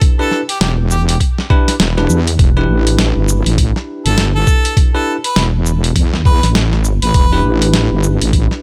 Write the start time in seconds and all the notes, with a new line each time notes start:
Already playing: D4 E4 G4 B4
0.01 kick, closed hi-hat
0.19 D4 E4 G4 A4 B4
0.31 snare
0.49 G4, closed hi-hat
0.61 E1 G4, snare, closed hi-hat
0.91 G4, shaker
1.09 G4, closed hi-hat
1.20 kick, closed hi-hat
1.38 snare
1.50 D4 E4 G4 B4, kick
1.68 snare, closed hi-hat
1.80 E1, snare, closed hi-hat
1.97 D4 E4 G4 B4, snare
2.09 E2, shaker
2.27 closed hi-hat
2.39 E1, kick, closed hi-hat
2.57 D4 E4 G4 B4
2.68 A1
2.87 closed hi-hat
2.99 snare, closed hi-hat
3.16 G1
3.28 shaker
3.46 A1, closed hi-hat
3.58 kick, closed hi-hat
3.76 snare
4.05 G1 A4, closed hi-hat
4.18 snare, closed hi-hat
4.35 A4
4.47 kick, shaker
4.65 closed hi-hat
4.77 kick, closed hi-hat
4.94 D4 E4 G4 A4 B4
5.24 B4, closed hi-hat
5.36 E1, snare, closed hi-hat
5.66 shaker
5.84 closed hi-hat
5.96 E2, kick, closed hi-hat
6.14 snare
6.25 B4, kick
6.43 A1, snare, closed hi-hat
6.55 snare, closed hi-hat
6.73 snare
6.84 shaker
7.02 A1 B4, closed hi-hat
7.14 E1, kick, closed hi-hat
7.32 D4 E4 G4 B4
7.44 A1
7.62 closed hi-hat
7.74 snare, closed hi-hat
7.92 G1
8.03 shaker
8.21 A1, closed hi-hat
8.33 kick, closed hi-hat
8.51 snare